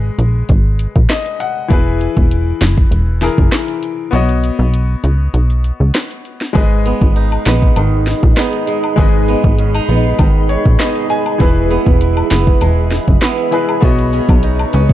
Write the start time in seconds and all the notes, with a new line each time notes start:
Already playing: G#1 G#3 G#4 B4 D#5
0.18 A#1, closed hi-hat
0.49 G#1, kick, closed hi-hat
0.79 closed hi-hat
0.96 A#1, kick
1.10 D#5, cross-stick, snare, clap, closed hi-hat
1.26 closed hi-hat
1.40 F#5, closed hi-hat
1.68 E1 E3 E4 G#4, kick, closed hi-hat
1.73 B4
2.01 closed hi-hat
2.17 E1, kick
2.31 closed hi-hat
2.61 F#1, snare, clap, closed hi-hat
2.78 kick
2.91 E1, closed hi-hat
3.21 E3 E4 G#4 A#4, snare, closed hi-hat
3.38 F#1, kick
3.52 cross-stick, snare, clap, closed hi-hat
3.68 closed hi-hat
3.83 closed hi-hat
4.11 B1 B3 F#4 C#5, closed hi-hat
4.15 D#5
4.29 closed hi-hat
4.44 closed hi-hat
4.59 B1
4.74 closed hi-hat
5.04 C#2, closed hi-hat
5.34 B1, closed hi-hat
5.50 closed hi-hat
5.64 closed hi-hat
5.80 C#2
5.95 cross-stick, snare, clap, closed hi-hat
6.11 closed hi-hat
6.25 closed hi-hat
6.41 snare
6.53 G#1 G#2 G#3 G#4 B4 D#5 B5, kick, closed hi-hat
6.57 D#5
6.86 B3, closed hi-hat, cabasa
7.01 G#1, kick
7.16 D#4, closed hi-hat
7.32 high woodblock
7.46 A#1 B3, snare, clap, closed hi-hat, cabasa
7.62 kick
7.76 G#1 D#3, closed hi-hat, high woodblock
8.07 snare, closed hi-hat, cabasa
8.23 A#1, kick
8.37 G#3 B3 D#4, cross-stick, snare, clap, closed hi-hat
8.53 closed hi-hat
8.67 G#3, closed hi-hat, cabasa
8.84 high woodblock
8.96 G#1 G#2 G#3 G#4 B4, kick, closed hi-hat
9.00 D#5
9.28 B3, closed hi-hat, cabasa
9.44 G#1, kick
9.58 C#4, closed hi-hat
9.74 D#4, high woodblock
9.89 A#1 B3, closed hi-hat, cabasa
10.19 G#1 D#3, kick, closed hi-hat, high woodblock
10.49 C#5, closed hi-hat, cabasa
10.66 A#1, kick
10.80 G#3 B3 D#4 D#5, cross-stick, snare, clap, closed hi-hat
10.95 closed hi-hat
11.10 G#3 G#5, closed hi-hat, cabasa
11.26 high woodblock
11.38 E1 E3 E4 G#4 E5, kick, closed hi-hat
11.42 B4
11.71 B3, closed hi-hat, cabasa
11.86 E1, kick
12.01 E4, closed hi-hat
12.17 high woodblock
12.31 F#1 B3, snare, clap, closed hi-hat, cabasa
12.47 kick
12.61 E1 G#3, closed hi-hat, high woodblock
12.91 snare, closed hi-hat, cabasa
13.08 F#1, kick
13.22 G#3 B3 E4, cross-stick, snare, clap, closed hi-hat
13.38 closed hi-hat
13.51 E3 G#3 E4 G#4 B4, closed hi-hat, cabasa
13.69 high woodblock
13.81 B1 B2 B3 F#4 B4 C#5 D#5 C#6, kick, closed hi-hat
13.85 D#5
13.98 closed hi-hat
14.13 C#4, closed hi-hat, cabasa
14.29 B1, kick, high woodblock
14.43 D#4, closed hi-hat
14.59 high woodblock
14.73 C#2 C#4, closed hi-hat, cabasa
14.89 kick